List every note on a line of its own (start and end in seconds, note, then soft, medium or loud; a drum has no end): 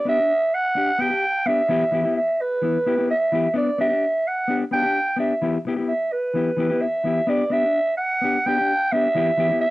0.05 0.17 B3 medium
0.05 0.18 D4 medium
0.05 0.18 G4 medium
0.05 0.56 E5 loud
0.19 0.32 D4 soft
0.55 1.02 F#5 loud
0.75 0.90 D4 medium
0.75 0.91 G4 medium
0.75 muted clean electric guitar stroke medium
0.99 1.10 B3 medium
0.99 1.09 G4 medium
0.99 1.48 G5 loud
1.10 1.24 G4 medium
1.10 muted clean electric guitar stroke soft
1.46 1.60 B3 medium
1.46 1.61 D4 medium
1.46 1.61 G4 medium
1.46 2.16 E5 loud
1.69 1.83 E3 medium
1.69 1.83 B3 medium
1.69 1.84 E4 medium
1.69 1.84 G4 medium
1.92 2.04 E3 medium
1.92 2.04 B3 medium
1.92 2.04 E4 medium
1.92 2.02 G4 medium
2.03 2.19 B3 soft
2.03 2.18 E4 soft
2.03 2.17 G4 medium
2.17 2.43 E5 medium
2.41 3.10 B4 medium
2.62 2.76 E3 medium
2.62 2.77 B3 medium
2.62 2.77 E4 medium
2.62 muted clean electric guitar stroke medium
2.86 2.98 B3 medium
2.86 2.98 E4 medium
2.86 2.96 G4 medium
2.97 3.13 B3 soft
2.97 3.12 E4 soft
2.97 3.11 G4 medium
3.10 3.53 E5 medium
3.32 3.46 E3 medium
3.32 3.47 B3 medium
3.32 3.47 E4 medium
3.32 3.48 G4 medium
3.54 3.69 B3 medium
3.54 3.69 D4 medium
3.54 3.78 D5 medium
3.54 muted clean electric guitar stroke medium
3.78 3.91 B3 medium
3.78 3.91 D4 medium
3.78 3.88 G4 medium
3.78 4.29 E5 medium
3.90 4.06 D4 soft
3.90 4.04 G4 medium
4.27 4.59 F#5 medium
4.48 4.62 B3 medium
4.48 4.63 D4 medium
4.48 4.64 G4 medium
4.71 4.84 B3 medium
4.71 4.84 D4 medium
4.71 4.82 G4 medium
4.71 5.16 G5 loud
4.83 4.99 D4 soft
4.83 4.97 G4 medium
5.16 5.32 B3 soft
5.16 5.33 D4 medium
5.16 5.34 G4 medium
5.16 5.59 E5 medium
5.42 5.56 E3 medium
5.42 5.57 B3 medium
5.42 5.57 E4 medium
5.42 5.57 G4 medium
5.65 5.78 B3 medium
5.65 5.77 E4 medium
5.65 5.75 G4 medium
5.65 muted clean electric guitar stroke medium
5.77 5.93 B3 soft
5.77 5.92 E4 soft
5.77 5.91 G4 soft
5.88 6.14 E5 medium
6.12 6.83 B4 medium
6.34 6.49 E3 soft
6.34 6.50 B3 medium
6.34 6.50 E4 medium
6.34 6.51 G4 medium
6.57 6.70 E3 medium
6.57 6.70 B3 medium
6.57 6.71 E4 medium
6.57 6.68 G4 medium
6.70 6.86 B3 soft
6.70 6.85 E4 soft
6.70 6.84 G4 medium
6.82 7.31 E5 medium
7.04 7.19 E3 soft
7.04 7.20 B3 soft
7.04 7.20 E4 medium
7.04 7.21 G4 medium
7.27 7.42 B3 medium
7.27 7.43 D4 medium
7.27 7.43 G4 medium
7.27 7.54 D5 medium
7.50 7.63 B3 medium
7.50 7.64 D4 medium
7.50 7.65 G4 medium
7.50 7.97 E5 loud
7.66 7.79 D4 soft
7.97 8.48 F#5 loud
8.22 8.36 B3 medium
8.22 8.37 D4 medium
8.22 8.38 G4 medium
8.46 8.58 B3 medium
8.46 8.59 D4 medium
8.46 8.56 G4 medium
8.46 8.93 G5 loud
8.58 8.73 D4 soft
8.58 8.71 G4 medium
8.92 9.06 B3 medium
8.92 9.07 D4 medium
8.92 9.08 G4 medium
8.92 9.60 E5 loud
9.15 9.29 E3 medium
9.15 9.30 B3 medium
9.15 9.30 E4 medium
9.15 9.30 G4 medium
9.37 9.50 E3 medium
9.37 9.51 B3 medium
9.37 9.50 E4 medium
9.37 9.48 G4 medium
9.50 9.66 B3 soft
9.50 9.65 E4 soft
9.50 9.64 G4 soft
9.61 9.70 E5 loud